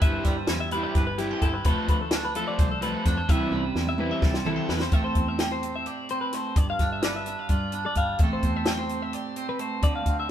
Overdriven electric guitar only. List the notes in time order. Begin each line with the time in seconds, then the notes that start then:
0.02 G3 C4 E4 G4
0.72 G3 C4 E4 G4
1.19 G3 C4 E4 G4
1.65 F3 A3 C4 F4
2.36 F3 A3 C4 F4
2.82 F3 A3 C4 F4
3.28 E3 G3 C4 E4
3.99 E3 G3 C4 E4
4.46 E3 G3 C4 E4